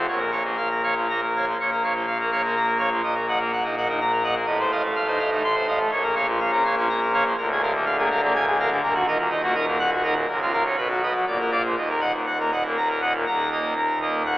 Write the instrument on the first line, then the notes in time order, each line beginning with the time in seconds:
pipe organ
0.08 A#1 A#2 C#5
0.19 A#4
0.32 C#5 F5
0.44 F3 A#3
0.57 F5
0.71 A#4
0.84 C#5 F5
0.96 F3
1.10 A#3 A#5
1.23 A#4
1.36 C#5 F5
1.48 F3
1.60 A#1 A#2 C#5
1.72 A#4
1.84 C#5 F5
1.95 F3
2.07 F5
2.20 A#3 A#4
2.32 C#5 F5
2.44 F3 A#3
2.56 A#5
2.67 A#4
2.79 C#5 F5
2.91 F3
3.03 A#1 A#2 D#5
3.15 A#4
3.28 D#5 F#5
3.40 A#3
3.53 F#5
3.64 D#4 A#4
3.78 D#5 F#5
3.88 A#3 D#4
4.01 A#5
4.12 A#4
4.24 D#5 F#5
4.35 A#3
4.46 A1 A2 D#5
4.60 C5
4.72 D#5 F5
4.83 A3
4.96 F5
5.07 D#4 C5
5.18 D#5 F5
5.30 A3 D#4
5.44 C6
5.55 C5
5.67 D#5 F5
5.79 A3
5.91 A#1 A#2 C#5
6.03 A#4
6.15 C#5 F5
6.27 F3
6.40 F5
6.52 C#4 A#4
6.65 C#5 F5
6.77 F3 C#4
6.89 A#5
7.02 A#4
7.14 C#5 F5
7.26 F3
7.38 D1 D2 A#4
7.52 G#4
7.63 A#4 F5
7.74 D3
7.86 F5
7.98 A#3 G#4
8.11 A#4 F5
8.22 D3 A#3
8.35 G#5
8.47 G#4
8.60 A#4 F5
8.72 D3
8.83 D#1 D#2 A#4
8.95 F#4
9.07 D#4 A#4 D#5
9.18 A#2
9.30 D#4 D#5
9.43 A#3 F#4
9.55 D#4 A#4 D#5
9.67 A#2 A#3
9.79 F#5
9.91 F#4
10.03 D#4 A#4 D#5
10.16 A#2
10.28 C#1 C#2 A#4
10.42 F4
10.53 A#4 F5
10.66 C#4
10.77 B1 B2 B4
10.90 F#4
11.03 B4 D#5
11.15 F#3
11.27 A#1 A#2 D5
11.40 A#4
11.51 D5 F5
11.65 F3
11.77 D#1 D#2 D#5
11.89 A#4
12.01 D#5 F#5
12.14 A#2
12.27 F#5
12.39 A#3 A#4
12.52 D#5 F#5
12.66 A#2 A#3
12.77 A#5
12.90 A#4
13.02 D#5 F#5
13.15 A#2
13.27 D#1 D#2 A#5
13.52 A#3 D#5
13.78 A#4
14.01 A#3 D#5
14.26 F#5